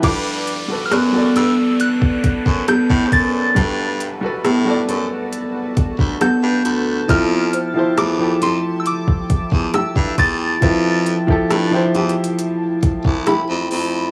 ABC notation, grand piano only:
X:1
M:4/4
L:1/16
Q:1/4=68
K:G
V:1 name="Grand piano"
[G,FAB]3 [G,FAB]2 [G,FAd]6- [G,FAd] z4 | [G,FAB]3 [G,FAB]2 [G,FAd]6- [G,FAd] z4 | [=F,EGA]3 [F,EGc]2 [F,EGA]6- [F,EGA] z4 | [=F,EGB]3 [F,EGA]2 [F,EGc]6- [F,EGc] z4 |]